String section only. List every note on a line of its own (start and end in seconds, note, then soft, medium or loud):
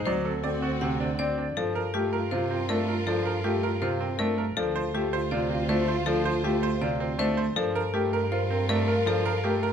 0.06 1.34 C4 medium
0.06 1.34 F#4 medium
1.57 4.34 F4 medium
1.57 4.34 A#4 medium
4.57 7.34 F4 medium
4.57 7.34 C5 medium
7.56 9.73 F4 medium
7.56 9.73 A#4 medium